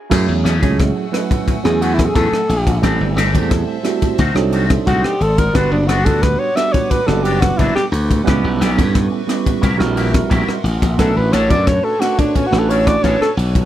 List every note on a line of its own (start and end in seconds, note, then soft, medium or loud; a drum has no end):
0.10 0.26 F#2 medium
0.10 0.31 E3 medium
0.10 0.54 F#3 loud
0.10 0.31 A3 medium
0.10 0.54 A3 medium
0.10 2.80 A3 medium
0.10 0.54 C#4 loud
0.10 0.31 C#4 medium
0.10 0.55 E4 medium
0.10 0.31 G#4 medium
0.10 0.55 G#4 loud
0.10 2.80 F#5 medium
0.10 2.80 G#5 medium
0.10 4.15 E6 medium
0.10 kick medium
0.10 cross-stick medium
0.10 crash medium
0.28 0.42 E2 medium
0.44 0.63 E2 medium
0.44 0.62 E3 medium
0.44 0.61 A3 medium
0.44 0.61 C#4 medium
0.44 0.60 G#4 medium
0.44 cross-stick medium
0.44 ride medium
0.61 0.91 C#2 medium
0.61 1.05 F#3 medium
0.61 1.05 A3 medium
0.61 0.77 A3 soft
0.61 0.78 C#4 medium
0.61 1.05 C#4 medium
0.61 1.06 E4 medium
0.61 0.78 G#4 medium
0.61 1.06 G#4 medium
0.61 kick medium
0.61 ride medium
0.78 muted clean electric guitar stroke soft
0.78 kick loud
0.78 cross-stick medium
0.78 ride medium
0.96 muted clean electric guitar stroke soft
1.12 1.56 F#3 medium
1.12 1.56 A3 medium
1.12 1.56 C#4 medium
1.12 1.56 E4 medium
1.12 1.56 B4 medium
1.12 muted clean electric guitar stroke soft
1.12 cross-stick medium
1.12 ride medium
1.30 muted clean electric guitar stroke soft
1.30 kick medium
1.30 ride medium
1.48 kick medium
1.48 ride medium
1.64 2.07 E2 medium
1.64 1.93 F#3 medium
1.64 1.93 A3 medium
1.64 1.93 C#4 medium
1.64 1.93 E4 medium
1.64 1.83 G#4 medium
1.64 1.93 G#4 medium
1.64 muted clean electric guitar stroke soft
1.64 cross-stick medium
1.81 1.98 E3 medium
1.81 1.97 A3 medium
1.81 1.97 C#4 medium
1.81 1.95 F#4 medium
1.81 1.97 G#4 medium
1.81 ride medium
1.94 2.41 F#3 medium
1.94 2.07 E4 medium
1.98 2.41 A3 medium
1.98 2.41 C#4 medium
1.98 2.41 E4 medium
1.98 2.42 A4 medium
1.98 kick medium
1.98 cross-stick medium
1.98 ride medium
2.05 2.15 G#4 medium
2.14 2.30 E2 medium
2.14 2.35 E3 medium
2.14 2.35 A3 medium
2.14 2.35 C#4 medium
2.14 2.36 G#4 medium
2.14 2.79 A4 medium
2.14 kick loud
2.14 ride medium
2.32 muted slap bass stroke soft
2.32 cross-stick medium
2.48 2.78 A#1 medium
2.48 2.58 B4 soft
2.48 muted clean electric guitar stroke soft
2.48 ride medium
2.66 muted clean electric guitar stroke soft
2.66 kick medium
2.66 ride medium
2.82 2.98 A1 medium
2.82 3.03 E3 medium
2.82 3.26 G3 medium
2.82 3.26 A3 medium
2.82 3.03 A3 medium
2.82 3.26 C4 medium
2.82 3.03 C4 medium
2.82 3.26 E4 medium
2.82 3.03 G4 medium
2.82 3.26 A4 loud
2.82 4.17 C5 medium
2.82 4.17 E5 medium
2.82 4.17 A5 medium
2.82 kick medium
2.82 cross-stick medium
2.82 ride medium
3.00 3.14 G1 medium
3.16 3.36 G1 loud
3.16 3.34 E3 medium
3.16 3.33 A3 medium
3.16 3.33 C4 loud
3.16 3.32 G4 medium
3.16 cross-stick medium
3.16 ride medium
3.33 3.63 E2 medium
3.33 3.76 G3 medium
3.33 3.77 A3 medium
3.33 3.49 A3 soft
3.33 3.49 C4 medium
3.33 3.77 C4 medium
3.33 3.77 E4 medium
3.33 3.49 G4 medium
3.33 3.77 A4 medium
3.33 kick medium
3.33 ride medium
3.50 muted clean electric guitar stroke soft
3.50 kick loud
3.50 cross-stick medium
3.50 ride medium
3.68 muted clean electric guitar stroke soft
3.83 4.18 G3 medium
3.83 4.18 A3 medium
3.83 4.18 C4 medium
3.83 4.19 E4 medium
3.83 4.19 F#4 medium
3.83 muted clean electric guitar stroke soft
3.83 cross-stick medium
3.83 ride medium
4.02 muted clean electric guitar stroke soft
4.02 kick medium
4.02 ride medium
4.17 4.33 D2 loud
4.17 4.36 D#3 medium
4.17 4.35 A3 medium
4.17 4.35 C4 medium
4.17 4.34 F#4 medium
4.17 5.53 D5 medium
4.17 8.22 F#5 medium
4.17 5.52 C6 medium
4.17 5.52 D#6 medium
4.17 kick medium
4.17 ride medium
4.35 4.78 C2 medium
4.35 4.64 F#3 loud
4.35 4.65 C4 medium
4.35 4.65 D4 medium
4.35 4.65 D#4 medium
4.35 4.65 A4 loud
4.35 muted clean electric guitar stroke medium
4.35 cross-stick medium
4.52 4.70 D#3 medium
4.52 4.69 A3 medium
4.52 4.69 C4 medium
4.52 4.69 F#4 medium
4.52 ride medium
4.70 5.13 F#3 medium
4.70 5.13 C4 medium
4.70 5.13 D4 medium
4.70 5.14 D#4 medium
4.70 5.14 A4 medium
4.70 muted clean electric guitar stroke soft
4.70 kick medium
4.70 cross-stick medium
4.70 ride medium
4.86 5.01 C2 medium
4.86 5.07 D#3 medium
4.86 5.07 A3 medium
4.86 5.07 C4 medium
4.86 5.06 F#4 medium
4.86 5.08 F#4 medium
4.86 kick loud
4.86 ride medium
5.04 5.24 G4 medium
5.04 muted slap bass stroke soft
5.04 cross-stick medium
5.20 5.49 G#1 medium
5.20 5.29 D#4 soft
5.20 5.30 F#4 soft
5.20 5.40 A4 medium
5.20 muted clean electric guitar stroke soft
5.20 ride medium
5.37 5.57 A#4 medium
5.37 muted clean electric guitar stroke soft
5.37 kick medium
5.37 ride medium
5.53 5.69 G1 medium
5.53 5.75 F#3 medium
5.53 5.97 G3 medium
5.53 5.98 B3 medium
5.53 5.75 B3 medium
5.53 5.98 D4 medium
5.53 5.75 D4 medium
5.53 5.98 F#4 medium
5.53 5.75 F#4 medium
5.53 8.23 B4 medium
5.53 5.73 B4 medium
5.53 5.98 B4 loud
5.53 8.23 D6 medium
5.53 kick medium
5.53 cross-stick medium
5.53 ride medium
5.71 5.86 F#1 medium
5.71 5.89 D4 medium
5.87 6.08 F#1 loud
5.87 6.06 F#3 medium
5.87 6.06 B3 medium
5.87 6.05 D4 medium
5.87 6.07 F#4 medium
5.87 6.05 F#4 medium
5.87 cross-stick medium
5.87 ride medium
6.05 6.35 D2 medium
6.05 6.48 G3 medium
6.05 6.49 B3 medium
6.05 6.22 B3 soft
6.05 6.49 D4 medium
6.05 6.22 D4 soft
6.05 6.22 F#4 medium
6.05 6.49 F#4 medium
6.05 6.24 A4 medium
6.05 6.49 B4 medium
6.05 kick medium
6.05 ride medium
6.23 6.40 B4 medium
6.23 muted clean electric guitar stroke soft
6.23 kick loud
6.23 cross-stick medium
6.23 ride medium
6.39 6.57 C#5 medium
6.39 muted clean electric guitar stroke soft
6.55 6.99 G3 medium
6.55 6.99 B3 medium
6.55 6.99 D4 medium
6.55 7.00 F#4 medium
6.55 7.00 D5 medium
6.55 6.74 E5 loud
6.55 muted clean electric guitar stroke soft
6.55 cross-stick medium
6.55 ride medium
6.72 6.92 C#5 medium
6.72 kick medium
6.72 ride medium
6.90 7.08 B4 medium
6.90 kick medium
6.90 ride medium
7.06 7.51 F#1 medium
7.06 7.36 G3 medium
7.06 7.36 B3 medium
7.06 7.36 D4 medium
7.06 7.37 F#4 medium
7.06 7.25 A4 medium
7.06 7.37 B4 loud
7.06 muted clean electric guitar stroke soft
7.06 cross-stick medium
7.23 7.42 F#3 medium
7.23 7.42 B3 medium
7.23 7.42 D4 medium
7.23 7.41 F#4 medium
7.23 7.42 G4 medium
7.23 ride medium
7.41 7.84 G3 medium
7.41 7.84 B3 medium
7.41 7.85 D4 medium
7.41 7.59 F#4 medium
7.41 7.85 F#4 medium
7.41 7.85 B4 medium
7.41 muted clean electric guitar stroke soft
7.41 kick medium
7.41 cross-stick medium
7.41 ride medium
7.57 7.73 F#1 medium
7.57 7.79 F#3 medium
7.57 7.80 B3 medium
7.57 7.80 D4 medium
7.57 7.75 E4 medium
7.57 7.80 F#4 medium
7.57 kick loud
7.57 ride medium
7.75 7.86 G4 medium
7.75 cross-stick medium
7.92 8.21 D2 medium
7.92 muted clean electric guitar stroke soft
7.92 ride medium
8.11 muted clean electric guitar stroke soft
8.11 kick medium
8.11 ride medium
8.24 8.41 C#2 medium
8.24 8.47 E3 medium
8.24 8.69 G3 loud
8.24 8.69 B3 loud
8.24 8.47 B3 medium
8.24 8.69 C#4 loud
8.24 8.47 C#4 medium
8.24 8.69 E4 loud
8.24 8.48 G4 medium
8.24 8.70 B4 loud
8.24 9.61 B4 medium
8.24 10.96 E5 medium
8.24 9.61 C#6 medium
8.24 kick medium
8.24 ride medium
8.28 cross-stick medium
8.44 8.58 B1 medium
8.60 8.80 B1 loud
8.60 8.78 E3 medium
8.60 8.78 B3 medium
8.60 8.77 C#4 medium
8.60 8.76 G4 medium
8.60 cross-stick medium
8.60 ride medium
8.76 9.07 G2 medium
8.76 9.20 G3 medium
8.76 9.20 B3 medium
8.76 8.93 B3 soft
8.76 9.20 C#4 medium
8.76 8.93 C#4 medium
8.76 9.21 E4 medium
8.76 8.93 G4 medium
8.76 9.21 A4 medium
8.76 kick medium
8.76 ride medium
8.94 muted clean electric guitar stroke soft
8.94 kick loud
8.94 cross-stick medium
8.94 ride medium
9.12 muted clean electric guitar stroke soft
9.27 9.62 G3 medium
9.27 9.62 B3 medium
9.27 9.62 C#4 medium
9.27 9.62 E4 medium
9.27 9.63 G4 medium
9.27 muted clean electric guitar stroke soft
9.27 cross-stick medium
9.27 ride medium
9.45 muted clean electric guitar stroke soft
9.45 kick medium
9.45 ride medium
9.61 9.78 C2 loud
9.61 9.79 F#3 medium
9.61 9.79 A#3 medium
9.61 9.78 E4 medium
9.61 9.78 G4 medium
9.61 10.97 A#4 medium
9.61 10.97 F#5 medium
9.61 10.97 C6 medium
9.61 kick medium
9.61 ride medium
9.77 10.22 A#1 medium
9.77 10.07 G3 loud
9.77 10.08 C4 medium
9.77 10.08 E4 medium
9.77 10.08 F#4 medium
9.77 10.08 A#4 loud
9.77 muted clean electric guitar stroke soft
9.77 cross-stick medium
9.96 10.14 F#3 medium
9.96 10.12 A#3 medium
9.96 10.12 E4 medium
9.96 10.12 G4 medium
9.96 ride medium
10.12 10.56 G3 medium
10.12 10.57 C4 medium
10.12 10.57 E4 medium
10.12 10.57 F#4 medium
10.12 10.57 A#4 medium
10.12 muted clean electric guitar stroke soft
10.12 kick medium
10.12 cross-stick medium
10.12 ride medium
10.29 10.46 A#1 medium
10.29 10.51 F#3 medium
10.29 10.51 A#3 medium
10.29 10.51 E4 medium
10.29 10.51 G4 medium
10.29 kick loud
10.29 ride medium
10.48 muted slap bass stroke soft
10.48 cross-stick medium
10.64 10.80 A1 medium
10.64 10.73 C5 soft
10.64 muted clean electric guitar stroke soft
10.64 ride medium
10.81 10.97 A#1 medium
10.81 muted clean electric guitar stroke soft
10.81 kick medium
10.81 ride medium
10.97 11.14 B1 medium
10.97 11.19 F#3 medium
10.97 11.41 A3 medium
10.97 11.42 C#4 medium
10.97 11.19 C#4 medium
10.97 11.42 D4 medium
10.97 11.20 D4 medium
10.97 11.42 F#4 medium
10.97 11.20 A4 medium
10.97 11.18 A4 medium
10.97 11.42 B4 loud
10.97 13.65 B4 medium
10.97 13.65 C#5 medium
10.97 13.65 A5 medium
10.97 13.65 C#6 medium
10.97 kick medium
10.97 cross-stick medium
10.97 ride medium
11.16 11.30 A1 medium
11.16 11.34 B4 medium
11.32 11.52 A1 medium
11.32 11.50 F#3 medium
11.32 11.49 C#4 medium
11.32 11.49 D4 medium
11.32 11.48 A4 medium
11.32 11.52 C#5 medium
11.32 cross-stick medium
11.32 ride medium
11.48 11.79 F#2 medium
11.48 11.92 A3 medium
11.48 11.92 C#4 medium
11.48 11.66 C#4 soft
11.48 11.93 D4 medium
11.48 11.66 D4 soft
11.48 11.93 F#4 medium
11.48 11.66 A4 medium
11.48 11.93 B4 medium
11.48 11.69 D5 medium
11.48 kick medium
11.48 ride medium
11.66 11.86 C#5 medium
11.66 muted clean electric guitar stroke soft
11.66 kick loud
11.66 cross-stick medium
11.66 ride medium
11.84 12.02 A4 medium
11.84 muted clean electric guitar stroke soft
11.99 12.44 A3 medium
11.99 12.44 C#4 medium
11.99 12.44 D4 medium
11.99 12.44 F#4 medium
11.99 12.21 F#4 medium
11.99 12.44 A4 medium
11.99 muted clean electric guitar stroke soft
11.99 cross-stick medium
11.99 ride medium
12.19 12.37 D4 medium
12.19 kick medium
12.19 ride medium
12.36 12.48 C#4 medium
12.36 kick medium
12.36 ride medium
12.47 12.60 F#4 medium
12.51 12.95 A1 medium
12.51 12.80 A3 medium
12.51 12.81 C#4 medium
12.51 12.81 D4 medium
12.51 12.81 F#4 medium
12.51 12.81 B4 medium
12.51 cross-stick medium
12.59 12.71 A4 medium
12.69 12.87 F#3 medium
12.69 12.86 C#4 medium
12.69 12.86 D4 medium
12.69 12.86 A4 medium
12.69 12.89 C#5 medium
12.69 ride medium
12.84 13.29 A3 medium
12.84 13.29 C#4 medium
12.84 13.29 D4 medium
12.84 13.29 F#4 medium
12.84 13.30 B4 medium
12.84 13.05 D5 loud
12.84 muted clean electric guitar stroke soft
12.84 kick medium
12.84 cross-stick medium
12.84 ride medium
13.03 13.18 A1 medium
13.03 13.24 F#3 medium
13.03 13.24 C#4 medium
13.03 13.25 D4 medium
13.03 13.25 A4 medium
13.03 13.21 C#5 medium
13.03 kick loud
13.03 ride medium
13.21 13.31 A4 medium
13.21 muted slap bass stroke soft
13.21 cross-stick medium
13.35 13.65 B1 medium
13.35 13.45 F#4 soft
13.35 13.46 B4 soft
13.35 muted clean electric guitar stroke soft
13.35 ride medium
13.55 muted clean electric guitar stroke soft
13.55 kick medium
13.55 ride medium